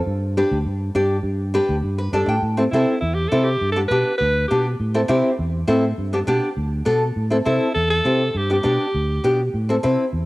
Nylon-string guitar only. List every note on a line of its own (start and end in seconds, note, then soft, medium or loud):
0.37 0.57 D4 medium
0.37 0.57 G4 medium
0.37 0.57 B4 medium
0.95 1.16 D4 medium
0.95 1.16 G4 medium
0.95 1.16 D5 medium
1.54 1.75 D4 medium
1.54 1.75 G4 medium
1.54 1.75 B4 medium
1.98 2.12 B4 medium
2.13 2.34 D4 medium
2.13 2.34 G4 medium
2.13 2.34 A4 medium
2.13 2.28 D5 medium
2.29 2.42 G5 medium
2.57 2.63 C4 medium
2.57 2.63 E4 medium
2.57 2.63 A4 medium
2.73 2.94 C4 medium
2.73 2.94 E4 medium
2.73 2.94 A4 medium
3.32 3.47 C4 medium
3.32 3.47 E4 medium
3.32 3.48 A4 medium
3.76 3.81 B3 medium
3.76 3.81 D4 medium
3.76 3.82 G4 medium
3.91 4.12 B3 medium
3.91 4.12 D4 medium
3.91 4.12 G4 medium
4.51 4.66 B3 medium
4.51 4.66 D4 medium
4.51 4.66 G4 medium
4.94 5.00 C4 medium
4.94 5.00 E4 medium
4.94 5.00 A4 medium
5.08 5.30 C4 medium
5.08 5.30 E4 medium
5.08 5.30 G4 medium
5.67 5.84 C4 medium
5.67 5.84 E4 medium
5.67 5.84 A4 medium
6.13 6.18 B3 medium
6.13 6.18 D4 medium
6.13 6.18 G4 medium
6.27 6.48 B3 medium
6.27 6.48 D4 medium
6.27 6.49 G4 loud
6.85 7.02 B3 medium
6.85 7.02 D4 medium
6.85 7.02 A4 medium
7.30 7.36 C4 medium
7.30 7.36 E4 medium
7.30 7.37 A4 medium
7.45 7.67 C4 medium
7.45 7.67 E4 medium
7.45 7.67 A4 medium
8.05 8.21 C4 medium
8.05 8.21 E4 medium
8.05 8.21 G4 medium
8.50 8.55 B3 medium
8.50 8.55 D4 medium
8.50 8.56 G4 medium
8.63 8.85 B3 medium
8.63 8.85 D4 medium
8.63 8.86 G4 medium
9.24 9.40 B3 medium
9.24 9.40 D4 medium
9.24 9.40 G4 medium
9.69 9.74 C4 medium
9.69 9.75 E4 medium
9.69 9.74 A4 medium
9.83 10.04 C4 medium
9.83 10.04 E4 medium
9.83 10.04 B4 medium